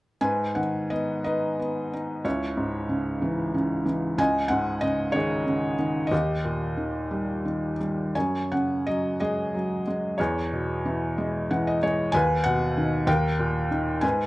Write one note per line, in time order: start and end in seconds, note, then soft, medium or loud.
0.21 2.21 G#2 soft
0.21 1.22 B4 soft
0.21 0.57 G#5 medium
0.55 1.88 D#3 soft
0.55 0.91 F#5 medium
0.90 1.58 B3 soft
0.90 1.23 D#5 medium
1.24 1.92 D#4 soft
1.24 2.22 B4 soft
1.24 2.21 D#5 medium
1.59 2.23 B3 soft
1.93 2.25 D#4 soft
2.25 4.14 C#2 medium
2.25 3.83 E4 soft
2.25 3.82 C#5 medium
2.57 3.83 G#2 soft
2.89 3.53 C#3 soft
3.22 3.84 E3 soft
3.54 4.17 C#3 soft
3.86 4.17 E3 soft
4.18 6.07 C#2 medium
4.18 4.79 D#5 medium
4.18 4.48 G#5 medium
4.48 5.75 G#2 soft
4.48 4.83 F#5 medium
4.81 5.45 C#3 soft
4.81 5.15 D#5 medium
5.12 5.77 D#3 medium
5.12 6.13 C#5 medium
5.16 6.08 G#4 medium
5.46 6.09 C#3 soft
5.79 6.10 D#3 soft
6.07 7.73 D#5 medium
6.12 8.11 D#2 medium
6.12 7.75 G4 soft
6.44 7.75 A#2 soft
6.77 7.44 D#3 soft
7.11 7.79 G3 soft
7.45 8.14 D#3 soft
7.80 8.15 G3 soft
8.15 10.15 F#2 soft
8.15 9.16 C#5 soft
8.15 8.52 G#5 medium
8.52 9.82 C#3 soft
8.52 8.87 F#5 medium
8.87 9.53 F#3 soft
8.87 9.19 D#5 medium
9.20 9.86 G#3 soft
9.20 10.15 G#4 medium
9.20 10.22 D#5 medium
9.55 10.18 F#3 soft
9.87 10.18 G#3 soft
10.18 12.11 E2 medium
10.18 11.79 G#4 soft
10.18 11.78 C#5 medium
10.53 11.79 B2 soft
10.86 11.49 E3 soft
11.18 11.81 G#3 soft
11.51 12.12 E3 soft
11.51 11.66 F#5 medium
11.67 11.82 D#5 medium
11.83 12.13 G#3 soft
11.83 12.12 C#5 medium
12.12 13.05 D#2 medium
12.12 13.04 B4 medium
12.12 12.42 G#5 medium
12.44 13.06 B2 soft
12.44 13.09 F#5 medium
12.77 13.07 D#3 medium
13.07 14.00 D#2 medium
13.07 14.00 A#4 medium
13.07 13.67 G5 medium
13.39 14.02 A#2 medium
13.71 14.02 D#3 soft
14.01 14.27 G#2 medium
14.01 14.27 B4 medium
14.01 14.27 G#5 medium